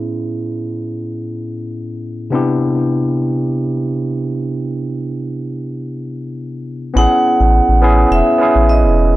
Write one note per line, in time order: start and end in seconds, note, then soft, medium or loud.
0.00 2.29 A2 medium
0.00 2.30 B3 medium
0.00 2.31 C#4 medium
0.00 2.31 E4 medium
0.00 2.32 G#4 medium
2.30 6.90 C3 medium
2.30 6.91 B3 medium
2.30 6.92 D4 medium
2.30 6.92 E4 medium
2.35 6.93 G4 medium
6.94 7.07 A1 loud
6.94 7.78 B3 medium
6.94 7.78 C#4 medium
6.94 7.79 E4 medium
6.94 8.15 F#5 loud
6.98 7.80 G#4 medium
7.40 7.61 A1 loud
7.68 8.06 A1 loud
7.82 8.36 B3 medium
7.82 8.37 C#4 medium
7.82 8.37 E4 medium
7.82 8.38 G#4 medium
8.11 8.22 E1 medium
8.11 8.71 E5 loud
8.38 9.16 B3 medium
8.38 9.16 C#4 medium
8.38 9.16 E4 medium
8.43 9.16 G#4 medium
8.55 8.86 A1 medium
8.69 9.16 D#5 medium
8.84 9.16 E1 medium